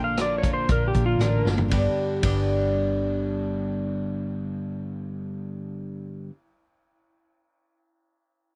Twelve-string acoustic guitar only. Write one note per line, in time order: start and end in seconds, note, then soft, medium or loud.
0.00 0.17 F3 soft
0.00 0.17 A#3 soft
0.00 0.17 D4 soft
0.00 0.16 A#4 soft
0.18 0.43 A#2 medium
0.18 0.43 D3 medium
0.18 0.44 F3 medium
0.18 0.43 A#3 medium
0.18 0.42 D4 medium
0.18 0.42 A#4 medium
0.43 0.67 F3 soft
0.43 0.68 A#3 soft
0.43 0.68 D4 soft
0.43 0.69 A#4 soft
0.68 0.94 F3 soft
0.68 0.95 A#3 medium
0.68 0.94 D4 medium
0.68 0.92 A#4 medium
0.93 1.19 F3 soft
0.93 1.19 A#3 soft
0.93 1.19 D4 soft
0.93 1.19 A#4 soft
1.19 1.45 A#2 medium
1.19 1.46 D3 medium
1.19 1.46 F3 medium
1.19 1.46 A#3 medium
1.19 1.46 D4 medium
1.19 1.46 A#4 medium
1.47 1.70 F3 soft
1.47 1.72 A#3 soft
1.47 1.73 D4 soft
1.47 1.72 A#4 soft
1.68 2.19 G2 medium
1.68 2.22 D3 medium
1.68 2.23 G3 medium
1.68 2.24 B3 medium
1.74 2.26 D4 medium
1.74 2.26 B4 medium
2.20 6.26 G2 medium
2.20 6.29 D3 medium
2.20 6.30 G3 medium
2.24 6.31 B3 medium
2.24 6.33 D4 medium
2.24 6.33 B4 medium